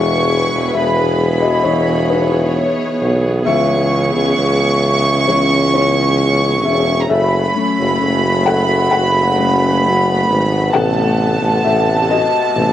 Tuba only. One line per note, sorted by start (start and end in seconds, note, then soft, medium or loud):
0.00 0.47 E1 loud
0.52 0.73 E1 medium
0.74 1.61 E1 medium
1.66 2.71 E1 loud
3.02 3.44 B1 medium
3.47 4.11 C#2 loud
4.15 4.36 C#2 medium
4.37 5.24 C#2 medium
5.29 6.67 C#2 loud
6.65 7.07 E1 medium
7.10 7.49 F#1 loud
7.79 8.00 F#1 medium
8.01 8.88 F#1 loud
8.92 10.25 F#1 loud
10.29 10.71 G#1 loud
10.74 11.38 A1 loud
11.42 11.63 A1 medium
11.65 12.25 A1 medium
12.56 12.73 A1 loud